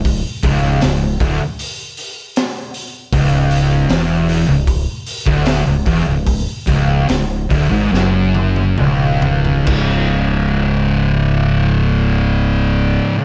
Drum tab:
CC |----------------|----------------|----------------|x---------------|
HH |o-o-o-o-o-o-o-o-|o-o-o-o-o-o-o-o-|o-o-o-o---------|----------------|
SD |----o-------o---|----o-------o---|----o---o-------|----------------|
T1 |----------------|----------------|----------oo----|----------------|
T2 |----------------|----------------|------------o---|----------------|
FT |----------------|----------------|--------------oo|----------------|
BD |o-o---o---------|o-------o--o--o-|o-o---o---------|o---------------|